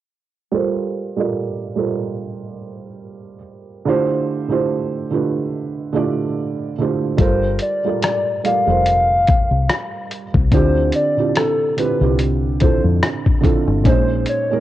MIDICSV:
0, 0, Header, 1, 5, 480
1, 0, Start_track
1, 0, Tempo, 833333
1, 300, Time_signature, 4, 2, 24, 8
1, 8410, End_track
2, 0, Start_track
2, 0, Title_t, "Soft synth lead"
2, 0, Program_c, 0, 80
2, 4149, Note_on_c, 0, 72, 99
2, 4362, Note_off_c, 0, 72, 0
2, 4390, Note_on_c, 0, 74, 82
2, 4602, Note_off_c, 0, 74, 0
2, 4629, Note_on_c, 0, 74, 80
2, 4841, Note_off_c, 0, 74, 0
2, 4870, Note_on_c, 0, 77, 91
2, 5699, Note_off_c, 0, 77, 0
2, 6068, Note_on_c, 0, 72, 103
2, 6281, Note_off_c, 0, 72, 0
2, 6310, Note_on_c, 0, 74, 75
2, 6522, Note_off_c, 0, 74, 0
2, 6551, Note_on_c, 0, 69, 80
2, 6762, Note_off_c, 0, 69, 0
2, 6792, Note_on_c, 0, 71, 81
2, 7003, Note_off_c, 0, 71, 0
2, 7269, Note_on_c, 0, 72, 78
2, 7389, Note_off_c, 0, 72, 0
2, 7994, Note_on_c, 0, 72, 114
2, 8204, Note_off_c, 0, 72, 0
2, 8232, Note_on_c, 0, 73, 81
2, 8410, Note_off_c, 0, 73, 0
2, 8410, End_track
3, 0, Start_track
3, 0, Title_t, "Felt piano"
3, 0, Program_c, 1, 0
3, 295, Note_on_c, 1, 55, 90
3, 298, Note_on_c, 1, 65, 87
3, 305, Note_on_c, 1, 69, 89
3, 311, Note_on_c, 1, 70, 80
3, 315, Note_on_c, 1, 72, 93
3, 400, Control_c, 1, 64, 127
3, 652, Note_off_c, 1, 55, 0
3, 653, Note_off_c, 1, 65, 0
3, 657, Note_off_c, 1, 69, 0
3, 660, Note_off_c, 1, 70, 0
3, 662, Note_off_c, 1, 72, 0
3, 671, Note_on_c, 1, 55, 72
3, 677, Note_on_c, 1, 65, 69
3, 682, Note_on_c, 1, 69, 68
3, 686, Note_on_c, 1, 70, 72
3, 692, Note_on_c, 1, 74, 81
3, 999, Note_off_c, 1, 55, 0
3, 1002, Note_off_c, 1, 65, 0
3, 1005, Note_off_c, 1, 69, 0
3, 1007, Note_off_c, 1, 70, 0
3, 1010, Note_off_c, 1, 74, 0
3, 1012, Note_on_c, 1, 55, 65
3, 1017, Note_on_c, 1, 65, 62
3, 1022, Note_on_c, 1, 69, 60
3, 1027, Note_on_c, 1, 70, 64
3, 1032, Note_on_c, 1, 72, 75
3, 1930, Note_off_c, 1, 55, 0
3, 1932, Note_off_c, 1, 65, 0
3, 1934, Note_off_c, 1, 69, 0
3, 1937, Note_off_c, 1, 70, 0
3, 1940, Note_off_c, 1, 72, 0
3, 2220, Note_on_c, 1, 50, 101
3, 2224, Note_on_c, 1, 57, 76
3, 2226, Control_c, 1, 64, 0
3, 2227, Note_on_c, 1, 64, 85
3, 2232, Note_on_c, 1, 65, 91
3, 2236, Note_on_c, 1, 67, 88
3, 2239, Note_on_c, 1, 72, 116
3, 2320, Control_c, 1, 64, 127
3, 2574, Note_off_c, 1, 50, 0
3, 2576, Note_off_c, 1, 57, 0
3, 2578, Note_off_c, 1, 64, 0
3, 2580, Note_off_c, 1, 65, 0
3, 2582, Note_off_c, 1, 67, 0
3, 2583, Note_on_c, 1, 50, 71
3, 2584, Note_off_c, 1, 72, 0
3, 2587, Note_on_c, 1, 57, 69
3, 2590, Note_on_c, 1, 64, 71
3, 2596, Note_on_c, 1, 65, 68
3, 2599, Note_on_c, 1, 67, 74
3, 2605, Note_on_c, 1, 72, 87
3, 2915, Note_off_c, 1, 50, 0
3, 2917, Note_off_c, 1, 57, 0
3, 2919, Note_off_c, 1, 64, 0
3, 2922, Note_off_c, 1, 65, 0
3, 2923, Note_off_c, 1, 67, 0
3, 2926, Note_off_c, 1, 72, 0
3, 2940, Note_on_c, 1, 50, 68
3, 2943, Note_on_c, 1, 57, 61
3, 2948, Note_on_c, 1, 64, 59
3, 2953, Note_on_c, 1, 65, 60
3, 2957, Note_on_c, 1, 67, 57
3, 2961, Note_on_c, 1, 71, 70
3, 3397, Note_off_c, 1, 50, 0
3, 3399, Note_off_c, 1, 57, 0
3, 3401, Note_off_c, 1, 64, 0
3, 3403, Note_off_c, 1, 65, 0
3, 3405, Note_off_c, 1, 67, 0
3, 3408, Note_off_c, 1, 71, 0
3, 3414, Note_on_c, 1, 50, 84
3, 3419, Note_on_c, 1, 57, 69
3, 3424, Note_on_c, 1, 64, 66
3, 3426, Note_on_c, 1, 65, 66
3, 3429, Note_on_c, 1, 67, 65
3, 3434, Note_on_c, 1, 74, 79
3, 3874, Note_off_c, 1, 50, 0
3, 3876, Note_off_c, 1, 57, 0
3, 3879, Note_off_c, 1, 64, 0
3, 3880, Note_off_c, 1, 65, 0
3, 3881, Note_off_c, 1, 67, 0
3, 3884, Note_off_c, 1, 74, 0
3, 3909, Note_on_c, 1, 50, 74
3, 3915, Note_on_c, 1, 57, 59
3, 3917, Note_on_c, 1, 64, 70
3, 3921, Note_on_c, 1, 65, 67
3, 3925, Note_on_c, 1, 67, 64
3, 3929, Note_on_c, 1, 72, 79
3, 4130, Note_off_c, 1, 65, 0
3, 4132, Note_on_c, 1, 55, 81
3, 4133, Note_off_c, 1, 50, 0
3, 4136, Note_off_c, 1, 57, 0
3, 4137, Note_off_c, 1, 64, 0
3, 4138, Note_on_c, 1, 65, 78
3, 4141, Note_off_c, 1, 67, 0
3, 4141, Note_on_c, 1, 69, 83
3, 4143, Note_off_c, 1, 72, 0
3, 4147, Control_c, 1, 64, 0
3, 4148, Note_on_c, 1, 70, 82
3, 4154, Note_on_c, 1, 72, 88
3, 4262, Control_c, 1, 64, 127
3, 4490, Note_off_c, 1, 55, 0
3, 4493, Note_off_c, 1, 65, 0
3, 4495, Note_off_c, 1, 69, 0
3, 4498, Note_off_c, 1, 70, 0
3, 4501, Note_off_c, 1, 72, 0
3, 4519, Note_on_c, 1, 55, 65
3, 4524, Note_on_c, 1, 65, 60
3, 4530, Note_on_c, 1, 69, 66
3, 4535, Note_on_c, 1, 70, 58
3, 4541, Note_on_c, 1, 74, 67
3, 4843, Note_off_c, 1, 55, 0
3, 4846, Note_off_c, 1, 65, 0
3, 4849, Note_off_c, 1, 69, 0
3, 4851, Note_off_c, 1, 70, 0
3, 4854, Note_off_c, 1, 74, 0
3, 4859, Note_on_c, 1, 55, 62
3, 4862, Note_on_c, 1, 65, 57
3, 4867, Note_on_c, 1, 69, 57
3, 4872, Note_on_c, 1, 70, 56
3, 4878, Note_on_c, 1, 74, 67
3, 4980, Note_off_c, 1, 55, 0
3, 4984, Note_off_c, 1, 65, 0
3, 4988, Note_off_c, 1, 69, 0
3, 4989, Note_on_c, 1, 55, 64
3, 4992, Note_off_c, 1, 70, 0
3, 4993, Note_on_c, 1, 65, 61
3, 4997, Note_on_c, 1, 69, 54
3, 4999, Note_off_c, 1, 74, 0
3, 5001, Note_on_c, 1, 70, 61
3, 5007, Note_on_c, 1, 72, 76
3, 5891, Note_off_c, 1, 55, 0
3, 5893, Note_off_c, 1, 65, 0
3, 5895, Note_off_c, 1, 69, 0
3, 5897, Note_off_c, 1, 70, 0
3, 5900, Note_off_c, 1, 72, 0
3, 6059, Note_on_c, 1, 50, 91
3, 6064, Note_on_c, 1, 60, 79
3, 6068, Control_c, 1, 64, 0
3, 6068, Note_on_c, 1, 64, 76
3, 6073, Note_on_c, 1, 65, 76
3, 6080, Note_on_c, 1, 67, 96
3, 6182, Control_c, 1, 64, 127
3, 6414, Note_off_c, 1, 50, 0
3, 6416, Note_off_c, 1, 60, 0
3, 6418, Note_off_c, 1, 64, 0
3, 6421, Note_off_c, 1, 65, 0
3, 6424, Note_off_c, 1, 67, 0
3, 6434, Note_on_c, 1, 50, 64
3, 6439, Note_on_c, 1, 60, 57
3, 6443, Note_on_c, 1, 64, 62
3, 6448, Note_on_c, 1, 65, 60
3, 6452, Note_on_c, 1, 67, 70
3, 6761, Note_off_c, 1, 50, 0
3, 6763, Note_off_c, 1, 60, 0
3, 6765, Note_off_c, 1, 64, 0
3, 6768, Note_off_c, 1, 65, 0
3, 6770, Note_off_c, 1, 67, 0
3, 6776, Note_on_c, 1, 50, 64
3, 6781, Note_on_c, 1, 60, 62
3, 6786, Note_on_c, 1, 64, 55
3, 6790, Note_on_c, 1, 65, 59
3, 6797, Note_on_c, 1, 67, 71
3, 6901, Note_off_c, 1, 50, 0
3, 6907, Note_off_c, 1, 60, 0
3, 6909, Note_on_c, 1, 50, 61
3, 6911, Note_off_c, 1, 64, 0
3, 6915, Note_off_c, 1, 65, 0
3, 6915, Note_on_c, 1, 60, 57
3, 6918, Note_off_c, 1, 67, 0
3, 6919, Note_on_c, 1, 64, 54
3, 6924, Note_on_c, 1, 65, 64
3, 6931, Note_on_c, 1, 67, 75
3, 7238, Note_off_c, 1, 50, 0
3, 7241, Note_off_c, 1, 60, 0
3, 7243, Note_off_c, 1, 64, 0
3, 7246, Note_off_c, 1, 65, 0
3, 7249, Note_off_c, 1, 67, 0
3, 7261, Note_on_c, 1, 50, 64
3, 7265, Note_on_c, 1, 60, 64
3, 7271, Note_on_c, 1, 64, 69
3, 7277, Note_on_c, 1, 65, 62
3, 7281, Note_on_c, 1, 69, 85
3, 7713, Note_off_c, 1, 50, 0
3, 7719, Note_off_c, 1, 60, 0
3, 7722, Note_off_c, 1, 64, 0
3, 7722, Note_on_c, 1, 50, 78
3, 7725, Note_off_c, 1, 65, 0
3, 7727, Note_off_c, 1, 69, 0
3, 7727, Note_on_c, 1, 60, 76
3, 7731, Note_on_c, 1, 64, 77
3, 7737, Note_on_c, 1, 65, 72
3, 7741, Note_on_c, 1, 69, 90
3, 7959, Note_off_c, 1, 50, 0
3, 7962, Note_off_c, 1, 60, 0
3, 7964, Note_off_c, 1, 64, 0
3, 7967, Note_off_c, 1, 65, 0
3, 7969, Note_off_c, 1, 69, 0
3, 7972, Note_on_c, 1, 46, 91
3, 7979, Note_on_c, 1, 56, 82
3, 7981, Note_on_c, 1, 61, 80
3, 7987, Note_on_c, 1, 63, 77
3, 7988, Control_c, 1, 64, 0
3, 7991, Note_on_c, 1, 72, 105
3, 8097, Control_c, 1, 64, 127
3, 8330, Note_off_c, 1, 46, 0
3, 8334, Note_off_c, 1, 56, 0
3, 8335, Note_off_c, 1, 61, 0
3, 8338, Note_off_c, 1, 63, 0
3, 8340, Note_off_c, 1, 72, 0
3, 8349, Note_on_c, 1, 46, 68
3, 8353, Note_on_c, 1, 56, 58
3, 8358, Note_on_c, 1, 61, 66
3, 8362, Note_on_c, 1, 63, 56
3, 8367, Note_on_c, 1, 70, 80
3, 8410, Note_off_c, 1, 46, 0
3, 8410, Note_off_c, 1, 56, 0
3, 8410, Note_off_c, 1, 61, 0
3, 8410, Note_off_c, 1, 63, 0
3, 8410, Note_off_c, 1, 70, 0
3, 8410, End_track
4, 0, Start_track
4, 0, Title_t, "Fingered electric bass"
4, 0, Program_c, 2, 33
4, 4139, Note_on_c, 2, 31, 90
4, 4364, Note_off_c, 2, 31, 0
4, 4996, Note_on_c, 2, 29, 72
4, 5454, Note_off_c, 2, 29, 0
4, 5477, Note_on_c, 2, 36, 70
4, 5573, Note_off_c, 2, 36, 0
4, 5958, Note_on_c, 2, 36, 86
4, 6053, Note_off_c, 2, 36, 0
4, 6059, Note_on_c, 2, 38, 95
4, 6283, Note_off_c, 2, 38, 0
4, 6919, Note_on_c, 2, 36, 76
4, 7375, Note_off_c, 2, 36, 0
4, 7397, Note_on_c, 2, 41, 78
4, 7493, Note_off_c, 2, 41, 0
4, 7877, Note_on_c, 2, 31, 86
4, 7980, Note_off_c, 2, 31, 0
4, 7980, Note_on_c, 2, 34, 88
4, 8204, Note_off_c, 2, 34, 0
4, 8410, End_track
5, 0, Start_track
5, 0, Title_t, "Drums"
5, 4138, Note_on_c, 9, 36, 97
5, 4138, Note_on_c, 9, 42, 76
5, 4195, Note_off_c, 9, 36, 0
5, 4195, Note_off_c, 9, 42, 0
5, 4371, Note_on_c, 9, 42, 68
5, 4429, Note_off_c, 9, 42, 0
5, 4622, Note_on_c, 9, 42, 86
5, 4630, Note_on_c, 9, 37, 109
5, 4679, Note_off_c, 9, 42, 0
5, 4687, Note_off_c, 9, 37, 0
5, 4865, Note_on_c, 9, 42, 67
5, 4923, Note_off_c, 9, 42, 0
5, 5102, Note_on_c, 9, 42, 73
5, 5160, Note_off_c, 9, 42, 0
5, 5341, Note_on_c, 9, 42, 48
5, 5347, Note_on_c, 9, 36, 99
5, 5399, Note_off_c, 9, 42, 0
5, 5405, Note_off_c, 9, 36, 0
5, 5584, Note_on_c, 9, 37, 115
5, 5585, Note_on_c, 9, 42, 72
5, 5641, Note_off_c, 9, 37, 0
5, 5643, Note_off_c, 9, 42, 0
5, 5824, Note_on_c, 9, 42, 57
5, 5881, Note_off_c, 9, 42, 0
5, 5957, Note_on_c, 9, 36, 90
5, 6015, Note_off_c, 9, 36, 0
5, 6058, Note_on_c, 9, 36, 95
5, 6059, Note_on_c, 9, 42, 72
5, 6116, Note_off_c, 9, 36, 0
5, 6117, Note_off_c, 9, 42, 0
5, 6292, Note_on_c, 9, 42, 68
5, 6350, Note_off_c, 9, 42, 0
5, 6540, Note_on_c, 9, 42, 90
5, 6549, Note_on_c, 9, 37, 113
5, 6598, Note_off_c, 9, 42, 0
5, 6606, Note_off_c, 9, 37, 0
5, 6785, Note_on_c, 9, 42, 67
5, 6842, Note_off_c, 9, 42, 0
5, 7021, Note_on_c, 9, 42, 73
5, 7079, Note_off_c, 9, 42, 0
5, 7259, Note_on_c, 9, 42, 50
5, 7267, Note_on_c, 9, 36, 88
5, 7317, Note_off_c, 9, 42, 0
5, 7325, Note_off_c, 9, 36, 0
5, 7505, Note_on_c, 9, 37, 114
5, 7506, Note_on_c, 9, 42, 66
5, 7562, Note_off_c, 9, 37, 0
5, 7563, Note_off_c, 9, 42, 0
5, 7639, Note_on_c, 9, 36, 80
5, 7697, Note_off_c, 9, 36, 0
5, 7739, Note_on_c, 9, 36, 85
5, 7744, Note_on_c, 9, 42, 59
5, 7797, Note_off_c, 9, 36, 0
5, 7801, Note_off_c, 9, 42, 0
5, 7978, Note_on_c, 9, 36, 95
5, 7979, Note_on_c, 9, 42, 73
5, 8036, Note_off_c, 9, 36, 0
5, 8037, Note_off_c, 9, 42, 0
5, 8213, Note_on_c, 9, 42, 65
5, 8271, Note_off_c, 9, 42, 0
5, 8410, End_track
0, 0, End_of_file